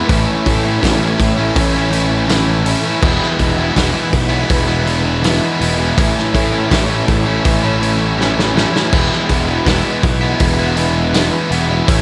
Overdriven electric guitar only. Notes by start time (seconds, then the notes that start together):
0.08 A2 E3 A3 C#4 E4
0.63 A3 C#4 E4
0.80 A2 E3 A3 C#4 E4
0.99 A3 C#4 E4
1.19 muted overdriven electric guitar stroke
1.37 A3 C#4 E4
1.73 A3 C#4 E4
1.90 E3 A3 C#4 E4
2.27 A2 E3 A3 C#4 E4
2.46 A3 C#4 E4
2.64 E3 A3 C#4 E4
2.83 A3 C#4 E4
3.01 E3 G#3 B3 E4
3.56 G#3 B3 E4
3.73 E3 G#3 B3 E4
3.91 G#3 B3 E4
4.11 muted overdriven electric guitar stroke
4.29 G#3 B3 E4
4.67 G#3 B3 E4
4.85 E3 G#3 B3 E4
5.22 E3 G#3 B3 E4
5.41 G#3 B3 E4
5.59 E3 G#3 B3 E4
5.78 G#3 B3 E4
5.96 A2 E3 A3 C#4 E4
6.51 A3 C#4 E4
6.69 A2 E3 A3 C#4 E4
6.88 A3 C#4 E4
7.07 muted overdriven electric guitar stroke
7.25 A3 C#4 E4
7.63 A3 C#4 E4
7.80 E3 A3 C#4 E4
8.17 A2 E3 A3 C#4 E4
8.35 A3 C#4 E4
8.55 E3 A3 C#4 E4
8.72 A3 C#4 E4
8.92 E3 G#3 B3 E4
9.47 G#3 B3 E4
9.66 E3 G#3 B3 E4
9.84 G#3 B3 E4
10.03 muted overdriven electric guitar stroke
10.21 G#3 B3 E4
10.59 G#3 B3 E4
10.76 E3 G#3 B3 E4
11.12 E3 G#3 B3 E4
11.32 G#3 B3 E4
11.50 E3 G#3 B3 E4
11.68 G#3 B3 E4
11.88 A2 E3 A3 C#4 E4